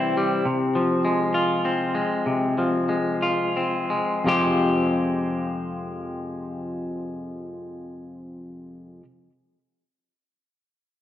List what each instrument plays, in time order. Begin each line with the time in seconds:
Already playing: clean electric guitar C3 E3 G3 C4 E4, ambient pad E4 G4 C5 G5
0.17 clean electric guitar G3
0.45 clean electric guitar C3
0.75 clean electric guitar F3
1.05 clean electric guitar G#3
1.34 clean electric guitar F4
1.65 clean electric guitar C4
1.95 clean electric guitar G#3
2.26 clean electric guitar C3
2.58 clean electric guitar F3
2.89 clean electric guitar G#3
3.22 clean electric guitar F4
3.57 clean electric guitar C4
3.90 clean electric guitar G#3
4.24 clean electric guitar F2 C3 F3 G#3 C4 G4